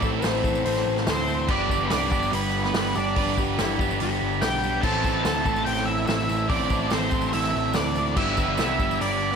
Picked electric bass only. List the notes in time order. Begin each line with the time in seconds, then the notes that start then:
0.02 A1
0.24 A1
0.44 A1
0.66 A1
0.87 A1
1.07 D2
1.49 G1
1.70 G1
1.92 C2
2.12 G1
2.33 G1
2.75 G1
2.96 G1
3.17 G1
3.38 G1
3.60 G1
3.79 G1
4.02 G1
4.22 G1
4.42 B1
4.83 A1
5.05 A1
5.25 D2
5.46 A1
5.67 A1
6.08 A1
6.30 A1
6.50 A1
6.70 A1
6.92 A1
7.12 A1
7.34 A1
7.55 A1
7.75 D2
8.16 G1
8.38 G1
8.58 C2
8.79 G1
9.01 G1